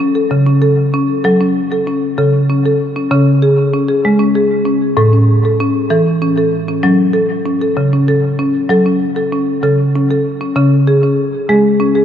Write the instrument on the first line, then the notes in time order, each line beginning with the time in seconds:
marimba
Already playing: F#3
0.00 C#4
0.15 A4
0.31 C#3
0.46 C#4
0.62 A4
0.94 C#4
1.24 F#3 A4
1.41 C#4
1.72 A4
1.87 C#4
2.18 C#3 A4
2.50 C#4
2.65 A4
2.96 C#4
3.11 C#3 C#4
3.42 G#4
3.73 C#4
3.88 G#4
4.05 G#3
4.19 C#4
4.35 G#4
4.66 C#4
4.97 A2 A4
5.13 C#4
5.45 A4
5.60 C#4
5.90 E3 A4
6.22 C#4
6.38 A4
6.68 C#4
6.83 F#3 C#4
7.13 A4
7.46 C#4
7.61 A4
7.77 C#3
7.93 C#4
8.08 A4
8.39 C#4
8.69 F#3 A4
8.86 C#4
9.16 A4
9.33 C#4
9.63 C#3 A4
9.95 C#4
10.11 A4
10.41 C#4
10.56 C#3 C#4
10.87 G#4
11.03 C#4
11.49 G#3 G#4
11.80 C#4
11.95 G#4